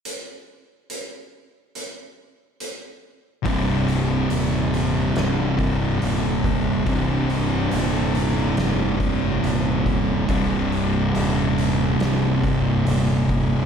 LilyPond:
<<
  \new Staff \with { instrumentName = "Distorted electric guitar" } { \clef bass \time 4/4 \key c \minor \tempo 4 = 70 r1 | <c, g, c>1 | <c, g, c>1 | <c, g, c>1 | }
  \new Staff \with { instrumentName = "Distorted electric guitar" } { \clef bass \time 4/4 \key c \minor r1 | <c, g, c>1 | <c, g, c>1 | <c, g, c>1 | }
  \new Staff \with { instrumentName = "Fingered electric bass" } { \clef bass \time 4/4 \key c \minor r1 | c,,4 ees,,4 c,,4 ees,,4 | c,,4 ees,,4 f,,4 ees,,4 | c,,4 ees,,4 c,,4 ees,,4 | }
  \new DrumStaff \with { instrumentName = "Drums" } \drummode { \time 4/4 hh4 hh4 hh4 hh4 | <hho bd>8 hho8 hho8 hho8 <hho sn>8 <hho bd>8 hho8 <hho bd>8 | <hho bd>8 hho8 hho8 hho8 <hho sn>8 <hho bd>8 hho8 <hho bd>8 | <hho bd>8 hho8 hho8 hho8 <hho sn>8 <hho bd>8 hho8 <hho bd>8 | }
>>